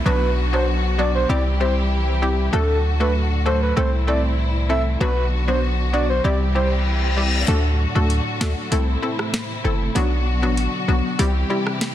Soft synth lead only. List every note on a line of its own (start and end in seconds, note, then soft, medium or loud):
0.06 0.31 B4 loud
0.53 0.65 C5 medium
0.99 1.12 D5 medium
1.15 1.27 C5 medium
1.29 1.43 D5 medium
1.60 1.73 C5 medium
2.53 2.78 A4 loud
3.01 3.12 B4 medium
3.46 3.59 C5 medium
3.62 3.74 B4 medium
3.77 3.90 C5 medium
4.08 4.21 D5 medium
4.70 4.83 E5 medium
5.01 5.25 B4 loud
5.48 5.60 C5 medium
5.93 6.06 D5 medium
6.10 6.21 C5 medium
6.24 6.37 D5 medium
6.55 6.68 C5 medium